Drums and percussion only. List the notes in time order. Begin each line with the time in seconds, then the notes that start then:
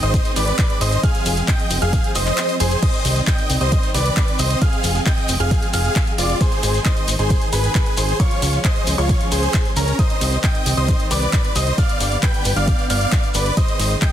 0.03 closed hi-hat, shekere
0.14 kick, closed hi-hat, ride, shekere
0.25 closed hi-hat, shekere
0.36 open hi-hat, ride, shekere
0.48 closed hi-hat, shekere
0.59 kick, clap, closed hi-hat, ride, shekere
0.70 closed hi-hat, shekere
0.81 open hi-hat, ride, shekere
0.92 closed hi-hat, shekere
1.03 kick, closed hi-hat, ride, shekere
1.15 closed hi-hat, shekere
1.26 open hi-hat, ride, shekere
1.37 closed hi-hat, shekere
1.48 kick, clap, closed hi-hat, ride, shekere
1.59 closed hi-hat, shekere
1.70 open hi-hat, ride, shekere
1.82 closed hi-hat, shekere
1.93 kick, closed hi-hat, ride, shekere
2.04 closed hi-hat, shekere
2.15 open hi-hat, ride, shekere
2.27 clap, closed hi-hat, shekere
2.38 clap, closed hi-hat, ride, shekere
2.49 closed hi-hat, shekere
2.60 open hi-hat, ride, shekere
2.71 closed hi-hat, shekere
2.82 kick, closed hi-hat, crash, ride, shekere
2.94 closed hi-hat, shekere
3.05 open hi-hat, ride, shekere
3.16 closed hi-hat, shekere
3.27 kick, clap, closed hi-hat, ride, shekere
3.38 closed hi-hat, shekere
3.50 open hi-hat, ride, shekere
3.61 closed hi-hat, shekere
3.72 kick, closed hi-hat, ride, shekere
3.83 closed hi-hat, shekere
3.94 open hi-hat, ride, shekere
4.06 closed hi-hat, shekere
4.17 kick, clap, closed hi-hat, ride, shekere
4.28 closed hi-hat, shekere
4.39 open hi-hat, ride, shekere
4.50 closed hi-hat, shekere
4.61 kick, closed hi-hat, ride, shekere
4.73 closed hi-hat, shekere
4.84 open hi-hat, ride, shekere
4.95 closed hi-hat, shekere
5.06 kick, clap, closed hi-hat, ride, shekere
5.18 closed hi-hat, shekere
5.28 open hi-hat, ride, shekere
5.40 closed hi-hat, shekere
5.51 kick, closed hi-hat, ride, shekere
5.62 closed hi-hat, shekere
5.73 open hi-hat, ride, shekere
5.85 closed hi-hat, shekere
5.96 kick, clap, closed hi-hat, ride, shekere
6.07 closed hi-hat, shekere
6.18 open hi-hat, ride, shekere
6.29 closed hi-hat, shekere
6.40 kick, closed hi-hat, ride, shekere
6.52 closed hi-hat, shekere
6.63 open hi-hat, ride, shekere
6.74 closed hi-hat, shekere
6.85 kick, clap, closed hi-hat, ride, shekere
6.97 closed hi-hat, shekere
7.08 open hi-hat, ride, shekere
7.19 closed hi-hat, shekere
7.30 kick, closed hi-hat, ride, shekere
7.41 closed hi-hat, shekere
7.53 open hi-hat, ride, shekere
7.64 closed hi-hat, shekere
7.75 kick, clap, closed hi-hat, ride, shekere
7.86 closed hi-hat, shekere
7.97 open hi-hat, ride, shekere
8.09 closed hi-hat, shekere
8.20 kick, closed hi-hat, ride, shekere
8.31 closed hi-hat, shekere
8.42 open hi-hat, ride, shekere
8.53 closed hi-hat, shekere
8.65 kick, clap, closed hi-hat, ride, shekere
8.76 closed hi-hat, shekere
8.87 open hi-hat, ride, shekere
8.98 closed hi-hat, shekere
9.09 kick, closed hi-hat, ride, shekere
9.21 closed hi-hat, shekere
9.32 open hi-hat, ride, shekere
9.43 closed hi-hat, shekere
9.54 kick, clap, closed hi-hat, ride, shekere
9.65 closed hi-hat, shekere
9.76 open hi-hat, ride, shekere
9.88 closed hi-hat, shekere
9.99 kick, closed hi-hat, ride, shekere
10.10 closed hi-hat, shekere
10.21 open hi-hat, ride, shekere
10.32 closed hi-hat, shekere
10.43 kick, clap, closed hi-hat, ride, shekere
10.54 closed hi-hat, shekere
10.66 open hi-hat, ride, shekere
10.77 closed hi-hat, shekere
10.88 kick, closed hi-hat, ride, shekere
11.00 closed hi-hat, shekere
11.11 open hi-hat, ride, shekere
11.22 closed hi-hat, shekere
11.33 kick, clap, closed hi-hat, ride, shekere
11.44 closed hi-hat, shekere
11.55 open hi-hat, ride, shekere
11.67 closed hi-hat, shekere
11.78 kick, closed hi-hat, ride, shekere
11.89 closed hi-hat, shekere
12.00 open hi-hat, ride, shekere
12.12 closed hi-hat, shekere
12.22 kick, clap, closed hi-hat, ride, shekere
12.34 closed hi-hat, shekere
12.45 open hi-hat, ride, shekere
12.56 closed hi-hat, shekere
12.68 kick, closed hi-hat, ride, shekere
12.79 closed hi-hat, shekere
12.90 open hi-hat, ride, shekere
13.01 closed hi-hat, shekere
13.12 kick, clap, closed hi-hat, ride, shekere
13.24 closed hi-hat, shekere
13.34 open hi-hat, ride, shekere
13.46 closed hi-hat, shekere
13.57 kick, closed hi-hat, ride, shekere
13.68 closed hi-hat, shekere
13.80 open hi-hat, ride, shekere
13.90 closed hi-hat, shekere
14.01 kick, clap, closed hi-hat, ride, shekere